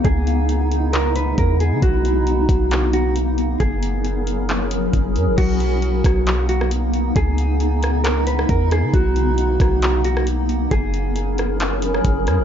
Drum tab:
CC |----------------|----------------|----------------|x---------------|
HH |x-x-x-x-x-x-x-x-|x-x-x-x-x-x-x-x-|x-x-x-x-x-x-x-x-|x-x-x-x-x-x-x-x-|
CP |--------x-------|--------x-------|--------x-------|--------x-------|
SD |----------------|----------------|----------------|------r----r----|
BD |o-----------o---|o-----o---------|o-----------o---|o-----o---------|

CC |----------------|----------------|----------------|
HH |x-x-x-x-x-x-x-x-|x-x-x-x-x-x-x-x-|x-x-x-x-x-x-x-x-|
CP |--------x-------|--------x-------|--------x-------|
SD |------r----r--r-|------r----r----|------r----r--r-|
BD |o-----------o---|o-----o---------|o-----------o---|